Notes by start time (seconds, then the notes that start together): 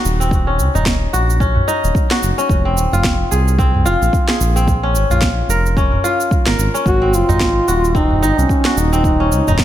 Already playing: C4 D#4 F#4
0.05 D#1, shaker
0.20 C4, shaker
0.31 kick, shaker
0.47 C#4
0.59 C#2, shaker
0.74 D#1 D#4, udu, shaker
0.86 kick, snare, shaker
1.13 A#1 F#4, shaker
1.30 shaker
1.40 C#4, kick, shaker
1.56 udu
1.68 D#4, shaker
1.84 D#1, shaker
1.95 kick, shaker
2.11 F#4, snare
2.22 F#1, shaker
2.38 C#4, shaker
2.49 F1, kick, shaker
2.65 C4
2.77 D#1, shaker
2.92 F1 F4, udu, shaker
3.04 kick, snare, shaker
3.31 C2 G#4, shaker
3.48 shaker
3.58 C4, kick, shaker
3.75 udu
3.85 F1 F4, shaker
4.01 A#1, shaker
4.13 kick, shaker
4.28 G#4, snare
4.40 A#1, shaker
4.56 C4, shaker
4.68 kick, shaker
4.83 C#4
4.95 G#1, shaker
5.10 A#1 F4, udu, shaker
5.22 kick, snare, shaker
5.48 F1 A#4, shaker
5.66 shaker
5.77 C#4, kick, shaker
5.92 udu
6.04 F4, shaker
6.20 shaker
6.31 kick, shaker
6.46 G#1 A#4, snare
6.58 G#1, shaker
6.74 C#4, shaker
6.86 G#1 F#4, kick, shaker
7.02 C4
7.13 F#1 F4, shaker
7.29 G#1 D#4, udu, shaker
7.40 kick, snare, shaker
7.68 D#1 F#4, shaker
7.84 shaker
7.95 C4 D#4, kick, shaker
8.10 udu
8.22 G#1 D#4, shaker
8.38 C2 C#4, shaker
8.49 kick, shaker
8.65 F#4, snare
8.76 D#1 D#4, shaker
8.93 C4, shaker
9.04 kick, shaker
9.20 C#4
9.31 C#2, shaker
9.47 D#1 D#4, udu, shaker
9.58 kick, snare, shaker